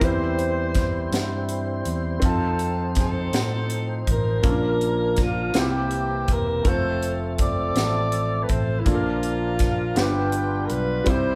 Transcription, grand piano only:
0.00 1.08 E3 soft
0.00 2.17 C4 soft
0.00 2.18 E4 soft
0.00 2.19 G4 soft
0.04 2.20 C5 medium
2.20 4.39 C4 medium
2.20 4.40 D#4 soft
2.20 4.40 F4 soft
2.25 4.41 A5 medium
4.43 5.50 A#2 soft
4.43 5.52 A#3 soft
4.43 4.50 C#4 soft
4.43 5.55 F4 soft
4.43 5.55 A#4 soft
4.50 5.58 D4 soft
5.54 6.62 C3 medium
5.54 6.65 A#3 soft
5.54 6.63 C4 soft
5.54 6.66 E4 soft
5.54 5.62 F4 soft
5.63 6.69 G4 soft
6.62 8.81 A3 soft
6.62 8.82 C4 soft
6.62 8.83 F4 soft
6.68 8.84 A4 medium
8.85 9.93 A#2 soft
8.85 9.96 A#3 soft
8.85 9.94 D4 soft
8.85 9.95 F4 soft
8.85 8.94 A4 soft
8.95 10.01 A#4 medium
9.95 11.03 G2 soft
9.95 11.06 B3 soft
9.95 11.07 D4 soft
9.95 11.08 F4 soft
9.95 11.08 G4 medium
11.04 11.35 C3 soft
11.04 11.35 G3 medium
11.04 11.35 C4 soft
11.04 11.35 E4 soft
11.10 11.35 G4 soft

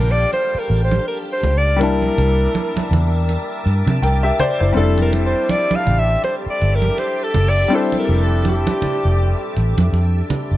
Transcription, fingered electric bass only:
0.00 0.24 A#1 medium
0.55 muted fingered electric bass stroke soft
0.70 0.98 A1 medium
1.43 1.81 C#2 loud
1.81 2.09 C2 loud
2.18 2.46 C2 loud
2.76 muted fingered electric bass stroke medium
2.91 3.36 E2 loud
3.66 3.82 G2 medium
3.87 3.98 C3 loud
4.02 4.30 C2 loud
4.61 4.73 F#1 medium
4.77 5.33 F1 loud
5.87 6.15 A1 medium
6.46 muted fingered electric bass stroke soft
6.62 6.90 G1 medium
7.36 7.64 F#1 loud
8.09 8.65 F1 loud
8.83 muted fingered electric bass stroke soft
9.05 9.33 F1 loud
9.57 9.73 A1 medium
9.78 9.89 F2 medium
9.92 10.21 F2 medium
10.51 10.57 F#1 medium

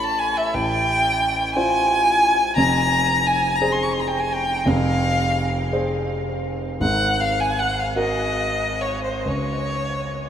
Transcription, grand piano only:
0.00 0.50 A1 medium
0.00 0.50 A4 medium
0.00 0.50 C#5 medium
0.54 2.53 A1 medium
1.56 2.54 F4 medium
1.56 2.54 C5 medium
2.56 4.62 F1 medium
2.56 4.62 F2 medium
3.62 4.63 G#4 medium
3.62 4.63 C5 medium
4.66 6.77 F1 medium
4.66 6.77 F2 medium
5.73 6.78 G#4 medium
5.73 6.78 C5 medium
6.80 9.21 G#1 medium
6.80 9.21 G#2 medium
7.96 9.21 F#4 medium
7.96 9.21 A#4 medium
9.26 10.29 C#2 medium

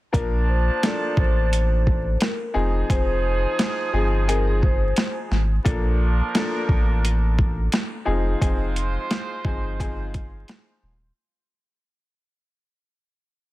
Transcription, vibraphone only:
0.13 0.45 A#4 medium
0.49 0.80 C5 medium
1.17 2.16 C5 medium
2.21 2.52 A#4 medium
2.90 3.89 C5 loud
3.92 4.24 G#4 medium
4.28 4.45 A#4 medium
4.48 4.61 G#4 medium
4.62 5.13 C5 medium

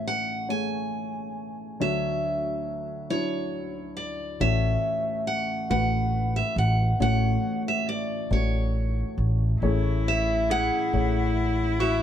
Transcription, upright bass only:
4.40 4.76 A1 medium
5.70 6.41 A1 medium
6.56 6.92 A1 medium
7.00 7.36 A1 medium
8.31 9.02 A1 medium
9.18 9.54 A1 medium
9.62 10.68 A1 medium
10.93 11.99 A1 medium

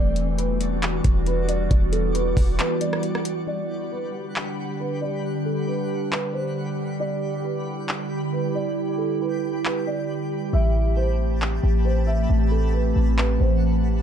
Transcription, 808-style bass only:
0.00 1.01 E1 loud
1.05 1.68 E1 loud
1.71 2.34 E1 loud
2.37 2.59 E1 loud
10.53 11.59 A1 loud
11.63 12.27 A1 loud
12.30 12.93 A1 loud
12.96 13.38 A1 loud
13.40 14.02 A1 loud

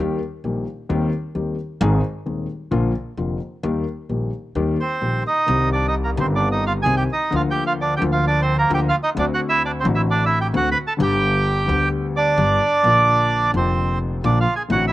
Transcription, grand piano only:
0.00 0.18 D#2 medium
0.00 0.18 D#3 medium
0.00 0.18 G3 medium
0.00 0.18 A#3 medium
0.00 0.18 G4 medium
0.44 0.64 A#1 medium
0.44 0.64 A#2 medium
0.44 0.63 D#3 medium
0.44 0.63 G3 soft
0.44 0.64 A#3 soft
0.44 0.64 G4 medium
0.89 1.09 D#2 loud
0.89 1.09 D#3 medium
0.89 1.09 G3 medium
0.89 1.09 C4 medium
0.89 1.09 G4 medium
1.35 1.54 D#2 medium
1.35 1.55 D#3 medium
1.35 1.54 G3 medium
1.35 1.54 C4 medium
1.35 1.55 G4 medium
1.81 2.00 G#1 medium
1.81 2.00 G#2 loud
1.81 2.00 D#3 medium
1.81 2.00 G#3 medium
1.81 2.00 C4 medium
1.81 2.00 G#4 loud
2.26 2.45 D#1 medium
2.26 2.45 D#2 medium
2.26 2.45 D#3 medium
2.26 2.45 G#3 soft
2.26 2.45 C4 soft
2.26 2.45 G#4 medium
2.71 2.91 A#1 medium
2.71 2.91 A#2 medium
2.71 2.91 D3 medium
2.71 2.91 F3 medium
2.71 2.91 A#3 medium
2.71 2.91 F4 medium
3.17 3.37 F1 medium
3.17 3.37 F2 medium
3.17 3.37 D3 soft
3.17 3.37 F3 soft
3.17 3.37 A#3 soft
3.17 3.37 F4 medium
3.63 3.83 D#2 medium
3.63 3.83 D#3 medium
3.63 3.83 G3 medium
3.63 3.83 A#3 medium
3.63 3.83 G4 medium
4.09 4.29 A#1 medium
4.09 4.29 A#2 medium
4.09 4.29 D#3 medium
4.09 4.29 G3 soft
4.09 4.29 A#3 soft
4.09 4.29 G4 medium
4.56 4.75 D#2 medium
4.56 4.75 D#3 medium
4.56 4.75 G3 medium
4.56 4.75 A#3 medium
4.56 4.76 G4 medium
5.02 5.21 A#1 soft
5.02 5.22 A#2 medium
5.02 5.21 D#3 soft
5.02 5.21 G3 soft
5.02 5.22 A#3 soft
5.02 5.22 G4 medium
5.46 6.14 C2 medium
5.46 6.14 C3 medium
5.46 6.13 D#3 medium
5.46 6.14 G3 medium
5.46 6.15 C4 medium
5.46 6.15 G4 medium
6.16 6.83 G1 medium
6.16 6.83 G2 medium
6.16 6.82 D#3 medium
6.16 6.83 G3 medium
6.16 6.84 C4 medium
6.16 6.84 G4 medium
6.86 7.06 C2 medium
6.86 7.06 C3 medium
6.86 7.06 D#3 medium
6.86 7.06 G3 medium
6.86 7.06 C4 medium
6.86 7.06 G4 medium
7.31 7.98 D2 medium
7.31 7.97 D3 medium
7.31 7.98 F3 medium
7.31 7.99 A#3 medium
7.31 7.99 F4 medium
7.99 8.67 D2 medium
7.99 8.67 D3 medium
7.99 8.67 F3 medium
7.99 8.67 A#3 medium
8.03 8.68 F4 medium
8.70 8.90 D2 loud
8.70 8.90 D3 medium
8.70 8.90 F3 medium
8.70 8.90 A#3 medium
8.70 8.90 F4 medium
9.15 9.82 D2 medium
9.15 9.16 D3 medium
9.15 9.82 D3 medium
9.15 9.82 A3 medium
9.15 9.82 C4 medium
9.19 9.83 F#4 medium
9.84 10.51 A1 medium
9.84 10.51 A2 medium
9.84 10.50 D3 medium
9.84 10.50 A3 medium
9.84 10.51 C4 medium
9.84 10.52 F#4 medium
10.54 10.73 D2 medium
10.54 10.73 D3 medium
10.54 10.73 A3 medium
10.54 10.73 C4 medium
10.54 10.73 F#4 medium
10.97 11.65 G1 medium
10.97 11.65 G2 medium
10.97 11.64 D3 medium
10.97 11.64 G3 medium
10.97 11.65 B3 medium
11.01 11.66 G4 medium
11.66 12.34 D2 medium
11.66 11.67 D3 medium
11.66 12.34 D3 medium
11.66 12.33 G3 medium
11.66 12.34 B3 medium
11.66 12.35 G4 medium
12.38 12.58 G1 medium
12.38 12.57 G2 medium
12.38 12.57 D3 medium
12.38 12.57 G3 medium
12.38 12.58 B3 medium
12.38 12.57 G4 medium
12.83 13.51 A#1 medium
12.83 13.51 A#2 medium
12.83 13.50 D3 medium
12.83 13.50 F3 medium
12.83 13.51 A#3 medium
12.83 13.52 F4 medium
13.52 14.20 F1 medium
13.52 14.20 F2 medium
13.52 14.19 D3 medium
13.52 14.20 F3 medium
13.52 14.21 A#3 medium
13.56 14.21 F4 medium
14.24 14.43 A#1 medium
14.24 14.43 A#2 medium
14.24 14.43 D3 medium
14.24 14.43 F3 medium
14.24 14.43 A#3 medium
14.24 14.43 F4 medium
14.68 14.93 A1 medium
14.68 14.93 A2 medium
14.68 14.93 D3 medium
14.68 14.93 A3 medium
14.68 14.93 C4 medium
14.72 14.93 F#4 medium

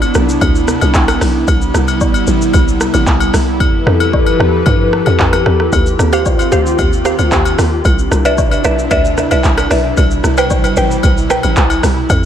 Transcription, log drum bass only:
0.15 0.38 B1 loud
0.42 0.77 D2 loud
0.82 0.93 C2 medium
0.95 1.18 C2 loud
1.21 1.44 B1 loud
1.48 1.71 C2 loud
1.74 2.21 C2 loud
2.27 2.51 A1 medium
2.54 2.89 C2 loud
2.94 3.05 A1 loud
3.07 3.30 C2 loud
3.34 3.62 C2 medium
3.60 3.83 F2 loud
3.86 4.33 F2 loud
4.40 4.63 E2 loud
4.66 5.02 G2 loud
5.07 5.18 F2 loud
5.19 5.43 F2 loud
5.46 5.69 E2 loud
5.72 5.96 D#2 loud
5.99 6.45 D#2 loud
6.52 6.75 D2 medium
6.79 7.14 D#2 loud
7.19 7.30 D2 medium
7.32 7.55 D#2 loud
7.58 7.82 D#2 medium
7.85 8.08 C2 loud
8.11 8.58 C2 loud
8.65 8.88 B1 medium
8.91 9.26 D2 loud
9.32 9.43 C2 medium
9.44 9.67 C2 loud
9.71 9.94 B1 loud
9.97 10.21 C2 loud
10.24 10.70 C2 medium
10.77 11.00 A1 loud
11.04 11.39 C2 loud
11.44 11.55 A1 medium
11.57 11.80 C2 medium
11.83 12.06 C2 medium
12.10 12.25 F2 loud

